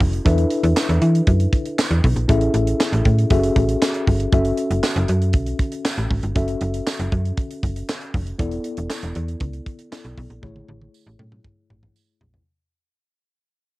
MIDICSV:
0, 0, Header, 1, 4, 480
1, 0, Start_track
1, 0, Key_signature, 3, "minor"
1, 0, Tempo, 508475
1, 244, Time_signature, 4, 2, 24, 8
1, 13018, End_track
2, 0, Start_track
2, 0, Title_t, "Tine electric piano"
2, 0, Program_c, 0, 4
2, 0, Note_on_c, 0, 61, 71
2, 0, Note_on_c, 0, 64, 75
2, 0, Note_on_c, 0, 66, 71
2, 0, Note_on_c, 0, 69, 69
2, 0, Note_on_c, 0, 76, 80
2, 202, Note_off_c, 0, 61, 0
2, 204, Note_off_c, 0, 64, 0
2, 206, Note_off_c, 0, 66, 0
2, 209, Note_off_c, 0, 69, 0
2, 209, Note_off_c, 0, 76, 0
2, 236, Note_on_c, 0, 62, 83
2, 241, Note_on_c, 0, 64, 70
2, 243, Note_on_c, 0, 69, 64
2, 248, Note_on_c, 0, 71, 78
2, 252, Note_on_c, 0, 76, 79
2, 2122, Note_off_c, 0, 62, 0
2, 2125, Note_off_c, 0, 64, 0
2, 2126, Note_off_c, 0, 69, 0
2, 2128, Note_off_c, 0, 71, 0
2, 2130, Note_off_c, 0, 76, 0
2, 2152, Note_on_c, 0, 61, 83
2, 2157, Note_on_c, 0, 64, 74
2, 2161, Note_on_c, 0, 68, 72
2, 2166, Note_on_c, 0, 69, 74
2, 2169, Note_on_c, 0, 76, 88
2, 3099, Note_off_c, 0, 61, 0
2, 3101, Note_off_c, 0, 64, 0
2, 3103, Note_off_c, 0, 68, 0
2, 3106, Note_off_c, 0, 69, 0
2, 3108, Note_off_c, 0, 76, 0
2, 3117, Note_on_c, 0, 61, 74
2, 3119, Note_on_c, 0, 66, 83
2, 3124, Note_on_c, 0, 68, 73
2, 3127, Note_on_c, 0, 69, 78
2, 3131, Note_on_c, 0, 76, 88
2, 4061, Note_off_c, 0, 61, 0
2, 4063, Note_off_c, 0, 66, 0
2, 4065, Note_off_c, 0, 68, 0
2, 4067, Note_off_c, 0, 69, 0
2, 4069, Note_off_c, 0, 76, 0
2, 4079, Note_on_c, 0, 61, 71
2, 4084, Note_on_c, 0, 66, 66
2, 4091, Note_on_c, 0, 69, 61
2, 4094, Note_on_c, 0, 76, 83
2, 5964, Note_off_c, 0, 61, 0
2, 5966, Note_off_c, 0, 66, 0
2, 5970, Note_off_c, 0, 69, 0
2, 5971, Note_off_c, 0, 76, 0
2, 5997, Note_on_c, 0, 61, 72
2, 6003, Note_on_c, 0, 66, 60
2, 6007, Note_on_c, 0, 69, 69
2, 6013, Note_on_c, 0, 76, 82
2, 7883, Note_off_c, 0, 61, 0
2, 7886, Note_off_c, 0, 66, 0
2, 7888, Note_off_c, 0, 69, 0
2, 7891, Note_off_c, 0, 76, 0
2, 7916, Note_on_c, 0, 59, 72
2, 7922, Note_on_c, 0, 64, 70
2, 7926, Note_on_c, 0, 69, 76
2, 7931, Note_on_c, 0, 74, 78
2, 9331, Note_off_c, 0, 59, 0
2, 9334, Note_off_c, 0, 64, 0
2, 9336, Note_off_c, 0, 69, 0
2, 9339, Note_off_c, 0, 74, 0
2, 9360, Note_on_c, 0, 59, 48
2, 9363, Note_on_c, 0, 64, 49
2, 9365, Note_on_c, 0, 69, 51
2, 9368, Note_on_c, 0, 74, 53
2, 9830, Note_off_c, 0, 64, 0
2, 9835, Note_on_c, 0, 57, 74
2, 9841, Note_on_c, 0, 64, 63
2, 9842, Note_off_c, 0, 59, 0
2, 9844, Note_off_c, 0, 69, 0
2, 9845, Note_on_c, 0, 68, 67
2, 9846, Note_off_c, 0, 74, 0
2, 9851, Note_on_c, 0, 73, 79
2, 11722, Note_off_c, 0, 57, 0
2, 11725, Note_off_c, 0, 64, 0
2, 11727, Note_off_c, 0, 68, 0
2, 11729, Note_off_c, 0, 73, 0
2, 13018, End_track
3, 0, Start_track
3, 0, Title_t, "FM bass"
3, 0, Program_c, 1, 39
3, 4, Note_on_c, 1, 29, 98
3, 191, Note_off_c, 1, 29, 0
3, 245, Note_on_c, 1, 40, 104
3, 431, Note_off_c, 1, 40, 0
3, 600, Note_on_c, 1, 40, 108
3, 695, Note_off_c, 1, 40, 0
3, 842, Note_on_c, 1, 40, 106
3, 936, Note_off_c, 1, 40, 0
3, 960, Note_on_c, 1, 52, 91
3, 1148, Note_off_c, 1, 52, 0
3, 1201, Note_on_c, 1, 42, 92
3, 1389, Note_off_c, 1, 42, 0
3, 1799, Note_on_c, 1, 40, 97
3, 1895, Note_off_c, 1, 40, 0
3, 1926, Note_on_c, 1, 35, 110
3, 2019, Note_off_c, 1, 35, 0
3, 2038, Note_on_c, 1, 34, 77
3, 2134, Note_off_c, 1, 34, 0
3, 2164, Note_on_c, 1, 33, 100
3, 2350, Note_off_c, 1, 33, 0
3, 2398, Note_on_c, 1, 33, 98
3, 2587, Note_off_c, 1, 33, 0
3, 2761, Note_on_c, 1, 33, 109
3, 2856, Note_off_c, 1, 33, 0
3, 2883, Note_on_c, 1, 45, 93
3, 3070, Note_off_c, 1, 45, 0
3, 3121, Note_on_c, 1, 30, 101
3, 3309, Note_off_c, 1, 30, 0
3, 3361, Note_on_c, 1, 33, 91
3, 3549, Note_off_c, 1, 33, 0
3, 3846, Note_on_c, 1, 31, 93
3, 4032, Note_off_c, 1, 31, 0
3, 4084, Note_on_c, 1, 30, 100
3, 4271, Note_off_c, 1, 30, 0
3, 4442, Note_on_c, 1, 30, 94
3, 4536, Note_off_c, 1, 30, 0
3, 4682, Note_on_c, 1, 30, 114
3, 4776, Note_off_c, 1, 30, 0
3, 4805, Note_on_c, 1, 42, 101
3, 5040, Note_on_c, 1, 35, 92
3, 5054, Note_off_c, 1, 42, 0
3, 5228, Note_off_c, 1, 35, 0
3, 5644, Note_on_c, 1, 33, 94
3, 5737, Note_off_c, 1, 33, 0
3, 5763, Note_on_c, 1, 32, 92
3, 5857, Note_off_c, 1, 32, 0
3, 5885, Note_on_c, 1, 31, 86
3, 5978, Note_off_c, 1, 31, 0
3, 6002, Note_on_c, 1, 30, 92
3, 6190, Note_off_c, 1, 30, 0
3, 6243, Note_on_c, 1, 30, 95
3, 6430, Note_off_c, 1, 30, 0
3, 6604, Note_on_c, 1, 30, 104
3, 6697, Note_off_c, 1, 30, 0
3, 6724, Note_on_c, 1, 42, 93
3, 6911, Note_off_c, 1, 42, 0
3, 7203, Note_on_c, 1, 30, 86
3, 7390, Note_off_c, 1, 30, 0
3, 7686, Note_on_c, 1, 29, 101
3, 7872, Note_off_c, 1, 29, 0
3, 7923, Note_on_c, 1, 28, 103
3, 8110, Note_off_c, 1, 28, 0
3, 8286, Note_on_c, 1, 28, 92
3, 8379, Note_off_c, 1, 28, 0
3, 8525, Note_on_c, 1, 28, 95
3, 8618, Note_off_c, 1, 28, 0
3, 8646, Note_on_c, 1, 40, 89
3, 8832, Note_off_c, 1, 40, 0
3, 8880, Note_on_c, 1, 37, 90
3, 9068, Note_off_c, 1, 37, 0
3, 9486, Note_on_c, 1, 35, 98
3, 9578, Note_off_c, 1, 35, 0
3, 9606, Note_on_c, 1, 35, 114
3, 9699, Note_off_c, 1, 35, 0
3, 9724, Note_on_c, 1, 34, 87
3, 9817, Note_off_c, 1, 34, 0
3, 9844, Note_on_c, 1, 33, 101
3, 10030, Note_off_c, 1, 33, 0
3, 10087, Note_on_c, 1, 33, 107
3, 10273, Note_off_c, 1, 33, 0
3, 10445, Note_on_c, 1, 33, 110
3, 10538, Note_off_c, 1, 33, 0
3, 10565, Note_on_c, 1, 45, 99
3, 10751, Note_off_c, 1, 45, 0
3, 11045, Note_on_c, 1, 33, 85
3, 11231, Note_off_c, 1, 33, 0
3, 11524, Note_on_c, 1, 34, 104
3, 11711, Note_off_c, 1, 34, 0
3, 13018, End_track
4, 0, Start_track
4, 0, Title_t, "Drums"
4, 6, Note_on_c, 9, 36, 85
4, 7, Note_on_c, 9, 46, 65
4, 100, Note_off_c, 9, 36, 0
4, 102, Note_off_c, 9, 46, 0
4, 125, Note_on_c, 9, 42, 51
4, 219, Note_off_c, 9, 42, 0
4, 243, Note_on_c, 9, 42, 95
4, 244, Note_on_c, 9, 36, 120
4, 337, Note_off_c, 9, 42, 0
4, 338, Note_off_c, 9, 36, 0
4, 359, Note_on_c, 9, 42, 57
4, 454, Note_off_c, 9, 42, 0
4, 477, Note_on_c, 9, 42, 71
4, 572, Note_off_c, 9, 42, 0
4, 600, Note_on_c, 9, 42, 58
4, 695, Note_off_c, 9, 42, 0
4, 721, Note_on_c, 9, 54, 102
4, 725, Note_on_c, 9, 38, 110
4, 728, Note_on_c, 9, 39, 80
4, 816, Note_off_c, 9, 54, 0
4, 820, Note_off_c, 9, 38, 0
4, 822, Note_off_c, 9, 39, 0
4, 844, Note_on_c, 9, 42, 59
4, 938, Note_off_c, 9, 42, 0
4, 960, Note_on_c, 9, 42, 74
4, 1055, Note_off_c, 9, 42, 0
4, 1086, Note_on_c, 9, 42, 46
4, 1180, Note_off_c, 9, 42, 0
4, 1199, Note_on_c, 9, 42, 93
4, 1201, Note_on_c, 9, 36, 113
4, 1293, Note_off_c, 9, 42, 0
4, 1296, Note_off_c, 9, 36, 0
4, 1321, Note_on_c, 9, 42, 53
4, 1416, Note_off_c, 9, 42, 0
4, 1442, Note_on_c, 9, 36, 99
4, 1442, Note_on_c, 9, 42, 86
4, 1536, Note_off_c, 9, 36, 0
4, 1537, Note_off_c, 9, 42, 0
4, 1563, Note_on_c, 9, 42, 53
4, 1657, Note_off_c, 9, 42, 0
4, 1685, Note_on_c, 9, 54, 94
4, 1688, Note_on_c, 9, 38, 111
4, 1690, Note_on_c, 9, 39, 96
4, 1779, Note_off_c, 9, 54, 0
4, 1783, Note_off_c, 9, 38, 0
4, 1785, Note_off_c, 9, 39, 0
4, 1800, Note_on_c, 9, 42, 52
4, 1894, Note_off_c, 9, 42, 0
4, 1925, Note_on_c, 9, 36, 90
4, 1925, Note_on_c, 9, 46, 68
4, 2019, Note_off_c, 9, 46, 0
4, 2020, Note_off_c, 9, 36, 0
4, 2042, Note_on_c, 9, 42, 54
4, 2136, Note_off_c, 9, 42, 0
4, 2161, Note_on_c, 9, 42, 107
4, 2163, Note_on_c, 9, 36, 118
4, 2255, Note_off_c, 9, 42, 0
4, 2257, Note_off_c, 9, 36, 0
4, 2276, Note_on_c, 9, 42, 53
4, 2370, Note_off_c, 9, 42, 0
4, 2397, Note_on_c, 9, 42, 77
4, 2492, Note_off_c, 9, 42, 0
4, 2523, Note_on_c, 9, 42, 60
4, 2617, Note_off_c, 9, 42, 0
4, 2645, Note_on_c, 9, 54, 100
4, 2647, Note_on_c, 9, 38, 104
4, 2649, Note_on_c, 9, 39, 76
4, 2739, Note_off_c, 9, 54, 0
4, 2741, Note_off_c, 9, 38, 0
4, 2744, Note_off_c, 9, 39, 0
4, 2765, Note_on_c, 9, 42, 59
4, 2859, Note_off_c, 9, 42, 0
4, 2881, Note_on_c, 9, 42, 79
4, 2883, Note_on_c, 9, 36, 99
4, 2975, Note_off_c, 9, 42, 0
4, 2978, Note_off_c, 9, 36, 0
4, 3008, Note_on_c, 9, 42, 49
4, 3102, Note_off_c, 9, 42, 0
4, 3119, Note_on_c, 9, 42, 96
4, 3121, Note_on_c, 9, 36, 107
4, 3213, Note_off_c, 9, 42, 0
4, 3216, Note_off_c, 9, 36, 0
4, 3243, Note_on_c, 9, 42, 60
4, 3338, Note_off_c, 9, 42, 0
4, 3362, Note_on_c, 9, 36, 96
4, 3363, Note_on_c, 9, 42, 95
4, 3456, Note_off_c, 9, 36, 0
4, 3457, Note_off_c, 9, 42, 0
4, 3481, Note_on_c, 9, 42, 58
4, 3575, Note_off_c, 9, 42, 0
4, 3606, Note_on_c, 9, 54, 93
4, 3608, Note_on_c, 9, 38, 113
4, 3610, Note_on_c, 9, 39, 94
4, 3700, Note_off_c, 9, 54, 0
4, 3703, Note_off_c, 9, 38, 0
4, 3705, Note_off_c, 9, 39, 0
4, 3721, Note_on_c, 9, 42, 57
4, 3815, Note_off_c, 9, 42, 0
4, 3846, Note_on_c, 9, 36, 86
4, 3846, Note_on_c, 9, 46, 68
4, 3941, Note_off_c, 9, 36, 0
4, 3941, Note_off_c, 9, 46, 0
4, 3965, Note_on_c, 9, 42, 58
4, 4059, Note_off_c, 9, 42, 0
4, 4083, Note_on_c, 9, 42, 101
4, 4084, Note_on_c, 9, 36, 127
4, 4177, Note_off_c, 9, 42, 0
4, 4178, Note_off_c, 9, 36, 0
4, 4199, Note_on_c, 9, 42, 59
4, 4293, Note_off_c, 9, 42, 0
4, 4318, Note_on_c, 9, 42, 67
4, 4412, Note_off_c, 9, 42, 0
4, 4442, Note_on_c, 9, 42, 59
4, 4536, Note_off_c, 9, 42, 0
4, 4563, Note_on_c, 9, 38, 113
4, 4566, Note_on_c, 9, 39, 77
4, 4566, Note_on_c, 9, 54, 92
4, 4658, Note_off_c, 9, 38, 0
4, 4660, Note_off_c, 9, 39, 0
4, 4661, Note_off_c, 9, 54, 0
4, 4683, Note_on_c, 9, 42, 53
4, 4777, Note_off_c, 9, 42, 0
4, 4799, Note_on_c, 9, 42, 82
4, 4893, Note_off_c, 9, 42, 0
4, 4926, Note_on_c, 9, 42, 45
4, 5020, Note_off_c, 9, 42, 0
4, 5034, Note_on_c, 9, 42, 84
4, 5040, Note_on_c, 9, 36, 107
4, 5128, Note_off_c, 9, 42, 0
4, 5135, Note_off_c, 9, 36, 0
4, 5160, Note_on_c, 9, 42, 51
4, 5254, Note_off_c, 9, 42, 0
4, 5280, Note_on_c, 9, 42, 89
4, 5281, Note_on_c, 9, 36, 97
4, 5374, Note_off_c, 9, 42, 0
4, 5375, Note_off_c, 9, 36, 0
4, 5399, Note_on_c, 9, 42, 61
4, 5493, Note_off_c, 9, 42, 0
4, 5525, Note_on_c, 9, 38, 107
4, 5526, Note_on_c, 9, 54, 88
4, 5527, Note_on_c, 9, 39, 97
4, 5619, Note_off_c, 9, 38, 0
4, 5620, Note_off_c, 9, 54, 0
4, 5622, Note_off_c, 9, 39, 0
4, 5640, Note_on_c, 9, 42, 50
4, 5734, Note_off_c, 9, 42, 0
4, 5764, Note_on_c, 9, 46, 71
4, 5765, Note_on_c, 9, 36, 82
4, 5858, Note_off_c, 9, 46, 0
4, 5859, Note_off_c, 9, 36, 0
4, 5882, Note_on_c, 9, 42, 54
4, 5976, Note_off_c, 9, 42, 0
4, 6001, Note_on_c, 9, 42, 98
4, 6002, Note_on_c, 9, 36, 122
4, 6095, Note_off_c, 9, 42, 0
4, 6097, Note_off_c, 9, 36, 0
4, 6116, Note_on_c, 9, 42, 55
4, 6210, Note_off_c, 9, 42, 0
4, 6238, Note_on_c, 9, 42, 72
4, 6332, Note_off_c, 9, 42, 0
4, 6362, Note_on_c, 9, 42, 58
4, 6456, Note_off_c, 9, 42, 0
4, 6482, Note_on_c, 9, 54, 109
4, 6486, Note_on_c, 9, 38, 105
4, 6488, Note_on_c, 9, 39, 77
4, 6577, Note_off_c, 9, 54, 0
4, 6580, Note_off_c, 9, 38, 0
4, 6582, Note_off_c, 9, 39, 0
4, 6603, Note_on_c, 9, 42, 65
4, 6697, Note_off_c, 9, 42, 0
4, 6721, Note_on_c, 9, 42, 66
4, 6723, Note_on_c, 9, 36, 100
4, 6815, Note_off_c, 9, 42, 0
4, 6818, Note_off_c, 9, 36, 0
4, 6847, Note_on_c, 9, 42, 43
4, 6941, Note_off_c, 9, 42, 0
4, 6960, Note_on_c, 9, 42, 78
4, 6962, Note_on_c, 9, 36, 111
4, 7055, Note_off_c, 9, 42, 0
4, 7057, Note_off_c, 9, 36, 0
4, 7085, Note_on_c, 9, 42, 58
4, 7180, Note_off_c, 9, 42, 0
4, 7203, Note_on_c, 9, 36, 92
4, 7206, Note_on_c, 9, 42, 88
4, 7298, Note_off_c, 9, 36, 0
4, 7301, Note_off_c, 9, 42, 0
4, 7326, Note_on_c, 9, 42, 57
4, 7420, Note_off_c, 9, 42, 0
4, 7445, Note_on_c, 9, 54, 83
4, 7451, Note_on_c, 9, 38, 111
4, 7453, Note_on_c, 9, 39, 82
4, 7539, Note_off_c, 9, 54, 0
4, 7545, Note_off_c, 9, 38, 0
4, 7547, Note_off_c, 9, 39, 0
4, 7563, Note_on_c, 9, 42, 55
4, 7657, Note_off_c, 9, 42, 0
4, 7685, Note_on_c, 9, 46, 68
4, 7686, Note_on_c, 9, 36, 97
4, 7779, Note_off_c, 9, 46, 0
4, 7780, Note_off_c, 9, 36, 0
4, 7805, Note_on_c, 9, 42, 48
4, 7899, Note_off_c, 9, 42, 0
4, 7922, Note_on_c, 9, 42, 108
4, 7924, Note_on_c, 9, 36, 127
4, 8016, Note_off_c, 9, 42, 0
4, 8018, Note_off_c, 9, 36, 0
4, 8038, Note_on_c, 9, 42, 52
4, 8132, Note_off_c, 9, 42, 0
4, 8157, Note_on_c, 9, 42, 67
4, 8252, Note_off_c, 9, 42, 0
4, 8279, Note_on_c, 9, 42, 57
4, 8374, Note_off_c, 9, 42, 0
4, 8403, Note_on_c, 9, 38, 92
4, 8404, Note_on_c, 9, 54, 105
4, 8405, Note_on_c, 9, 39, 84
4, 8497, Note_off_c, 9, 38, 0
4, 8498, Note_off_c, 9, 54, 0
4, 8499, Note_off_c, 9, 39, 0
4, 8520, Note_on_c, 9, 42, 55
4, 8614, Note_off_c, 9, 42, 0
4, 8639, Note_on_c, 9, 42, 74
4, 8734, Note_off_c, 9, 42, 0
4, 8763, Note_on_c, 9, 42, 48
4, 8858, Note_off_c, 9, 42, 0
4, 8876, Note_on_c, 9, 42, 86
4, 8880, Note_on_c, 9, 36, 107
4, 8970, Note_off_c, 9, 42, 0
4, 8975, Note_off_c, 9, 36, 0
4, 9000, Note_on_c, 9, 42, 49
4, 9094, Note_off_c, 9, 42, 0
4, 9122, Note_on_c, 9, 36, 91
4, 9122, Note_on_c, 9, 42, 82
4, 9216, Note_off_c, 9, 36, 0
4, 9217, Note_off_c, 9, 42, 0
4, 9239, Note_on_c, 9, 42, 55
4, 9334, Note_off_c, 9, 42, 0
4, 9366, Note_on_c, 9, 54, 89
4, 9369, Note_on_c, 9, 38, 118
4, 9371, Note_on_c, 9, 39, 77
4, 9460, Note_off_c, 9, 54, 0
4, 9463, Note_off_c, 9, 38, 0
4, 9465, Note_off_c, 9, 39, 0
4, 9481, Note_on_c, 9, 42, 53
4, 9576, Note_off_c, 9, 42, 0
4, 9605, Note_on_c, 9, 46, 61
4, 9606, Note_on_c, 9, 36, 93
4, 9700, Note_off_c, 9, 36, 0
4, 9700, Note_off_c, 9, 46, 0
4, 9726, Note_on_c, 9, 42, 54
4, 9820, Note_off_c, 9, 42, 0
4, 9844, Note_on_c, 9, 48, 63
4, 9845, Note_on_c, 9, 36, 125
4, 9939, Note_off_c, 9, 36, 0
4, 9939, Note_off_c, 9, 48, 0
4, 9966, Note_on_c, 9, 48, 55
4, 10060, Note_off_c, 9, 48, 0
4, 10085, Note_on_c, 9, 48, 61
4, 10180, Note_off_c, 9, 48, 0
4, 10208, Note_on_c, 9, 48, 56
4, 10303, Note_off_c, 9, 48, 0
4, 10329, Note_on_c, 9, 54, 108
4, 10423, Note_off_c, 9, 54, 0
4, 10566, Note_on_c, 9, 47, 84
4, 10660, Note_off_c, 9, 47, 0
4, 10686, Note_on_c, 9, 47, 71
4, 10780, Note_off_c, 9, 47, 0
4, 10804, Note_on_c, 9, 36, 109
4, 10806, Note_on_c, 9, 45, 91
4, 10898, Note_off_c, 9, 36, 0
4, 10901, Note_off_c, 9, 45, 0
4, 11047, Note_on_c, 9, 45, 98
4, 11141, Note_off_c, 9, 45, 0
4, 11166, Note_on_c, 9, 45, 87
4, 11260, Note_off_c, 9, 45, 0
4, 11287, Note_on_c, 9, 54, 97
4, 11381, Note_off_c, 9, 54, 0
4, 11525, Note_on_c, 9, 43, 95
4, 11619, Note_off_c, 9, 43, 0
4, 11646, Note_on_c, 9, 43, 99
4, 11740, Note_off_c, 9, 43, 0
4, 13018, End_track
0, 0, End_of_file